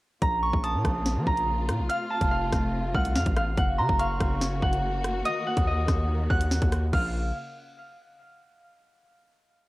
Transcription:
0.22 808-style bass A#1, string section C#3 A#3 F4, harp A#5, kick, closed hi-hat
0.43 harp C#6, synth bell C#6
0.53 808-style bass A#1, kick
0.64 harp A5, synth bell D#6, closed hi-hat
0.74 808-style bass A#2
0.85 808-style bass A#1, kick, cross-stick, closed hi-hat
1.06 snare, closed hi-hat
1.16 808-style bass F3
1.27 808-style bass A#1, harp A#5, kick
1.37 closed hi-hat
1.69 808-style bass A#2, cross-stick, closed hi-hat
1.79 808-style bass A#1
1.89 string section C3 A3, harp F5, synth bell F6, closed hi-hat
2.10 harp A5
2.21 808-style bass F1, kick, closed hi-hat
2.31 harp F5
2.53 808-style bass F1, kick, cross-stick, snare, closed hi-hat
2.95 808-style bass C2, harp F#5, synth bell F6, kick
3.05 closed hi-hat
3.16 808-style bass F2, harp F5, snare
3.26 808-style bass A1, kick, closed hi-hat
3.37 harp F5, cross-stick, closed hi-hat
3.58 808-style bass F#1, string section C#3 A#3 F#4, harp F#5, kick, closed hi-hat
3.78 808-style bass C#3, harp A#5, synth bell C6
3.89 808-style bass F#1, kick
3.99 harp F5, synth bell C#6, closed hi-hat
4.20 808-style bass F#1, kick, cross-stick, closed hi-hat
4.41 snare, closed hi-hat
4.62 808-style bass F#1, harp F#5, kick
4.73 closed hi-hat
5.04 cross-stick, closed hi-hat
5.25 string section D#3, harp D#5, synth bell D#6, closed hi-hat
5.47 harp F#5
5.57 808-style bass D#2, kick, closed hi-hat
5.67 harp D#5
5.88 808-style bass D#2, kick, cross-stick, snare, closed hi-hat
6.30 808-style bass D#2, harp F#5, synth bell F#6, kick
6.41 closed hi-hat
6.51 snare
6.62 808-style bass D#2, kick, closed hi-hat
6.72 cross-stick, closed hi-hat
6.93 808-style bass A#1, string section C#3 A#3 F4, harp F5, synth bell F6, kick, crash

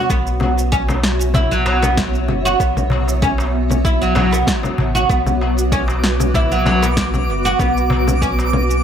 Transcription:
Already playing: ambient pad B3 F#4 C#5
0.09 sub bass B1, oud B3, ambient pad E5, kick, shaker
0.27 shaker
0.40 darbuka ka, low conga
0.58 shaker
0.72 oud C#4, kick, shaker
0.88 darbuka tek, low conga, shaker
1.03 snare
1.21 shaker
1.34 oud E4, kick, darbuka dum, low conga, shaker
1.51 oud F#3, shaker
1.66 oud F#3, darbuka tek
1.82 oud B3, darbuka ka, low conga, shaker
1.97 kick, snare, shaker
2.15 shaker
2.28 sub bass F#1, low conga
2.45 oud F#4, shaker
2.60 sub bass B1, oud B3, kick, shaker
2.77 low conga, shaker
2.90 darbuka ka, darbuka dum
3.08 darbuka tek, shaker
3.22 oud C#4, kick, low conga, shaker
3.38 darbuka tek, shaker
3.71 low conga, shaker
3.85 oud E4, kick, shaker
4.02 oud F#3, shaker
4.15 oud F#3, darbuka tek, low conga, darbuka dum
4.31 oud B3, darbuka ka, shaker
4.47 kick, snare, shaker
4.63 darbuka ka, low conga, shaker
4.78 sub bass A1, darbuka tek, darbuka dum
4.95 oud F#4, shaker
5.09 sub bass B1, oud B3, ambient pad B4 D6, synth texture D6, kick, shaker
5.27 low conga, shaker
5.41 darbuka ka
5.58 shaker
5.72 oud C#4, kick, low conga, shaker
5.88 darbuka tek, shaker
6.04 snare
6.20 low conga, shaker
6.34 oud E4, kick, darbuka dum, shaker
6.52 oud F#3, shaker
6.66 oud F#3, darbuka tek, low conga
6.83 oud B3, darbuka ka, shaker
6.97 kick, snare, shaker
7.14 low conga, shaker
7.28 sub bass F#1
7.45 oud F#4, shaker
7.59 sub bass B1, oud B3, kick, low conga, shaker
7.77 shaker
7.90 darbuka ka, darbuka dum
8.08 low conga, shaker
8.22 oud C#4, kick, shaker
8.39 darbuka tek, shaker
8.53 low conga
8.71 shaker

